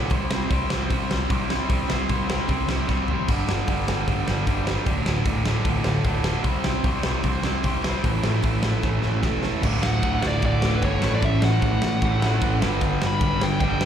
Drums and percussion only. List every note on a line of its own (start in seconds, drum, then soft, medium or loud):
0.10 kick loud
0.10 open hi-hat medium
0.31 snare loud
0.50 kick loud
0.50 open hi-hat medium
0.70 snare loud
0.90 kick loud
0.90 open hi-hat medium
1.11 snare loud
1.30 kick loud
1.30 open hi-hat soft
1.50 snare loud
1.70 kick loud
1.70 open hi-hat medium
1.90 snare loud
2.09 kick loud
2.09 open hi-hat medium
2.30 snare loud
2.48 kick loud
2.48 open hi-hat soft
2.69 snare loud
2.89 kick medium
2.89 snare medium
3.08 floor tom medium
3.28 kick loud
3.28 open hi-hat medium
3.28 splash medium
3.49 snare loud
3.68 kick loud
3.68 open hi-hat medium
3.88 snare loud
4.08 kick loud
4.08 open hi-hat medium
4.28 snare loud
4.47 kick loud
4.47 open hi-hat medium
4.67 snare loud
4.86 kick loud
4.86 open hi-hat medium
5.06 snare loud
5.25 kick loud
5.25 open hi-hat medium
5.46 snare loud
5.65 kick loud
5.65 open hi-hat soft
5.84 snare loud
6.04 kick loud
6.04 open hi-hat soft
6.24 snare loud
6.44 kick loud
6.44 open hi-hat medium
6.64 snare loud
6.84 kick loud
6.84 open hi-hat medium
7.03 snare loud
7.23 kick loud
7.23 open hi-hat medium
7.43 snare medium
7.64 kick medium
7.64 open hi-hat medium
7.84 snare loud
8.04 kick loud
8.04 open hi-hat medium
8.24 snare loud
8.43 kick loud
8.43 open hi-hat medium
8.63 snare loud
8.83 kick loud
8.83 snare medium
9.02 snare medium
9.23 kick loud
9.23 snare medium
9.43 snare medium
9.63 kick loud
9.63 crash loud
9.63 crash medium
9.83 snare loud
10.03 kick loud
10.03 crash medium
10.22 snare loud
10.42 kick loud
10.42 crash medium
10.62 snare loud
10.82 kick loud
10.82 crash medium
11.02 snare medium
11.22 kick loud
11.22 crash medium
11.42 snare loud
11.62 kick loud
11.62 crash medium
11.82 snare loud
12.02 kick loud
12.02 crash medium
12.22 snare loud
12.42 kick loud
12.42 crash medium
12.62 snare loud
12.81 kick loud
12.81 crash medium
13.02 snare loud
13.21 kick loud
13.21 crash medium
13.41 snare loud
13.60 kick loud
13.60 crash medium
13.81 snare loud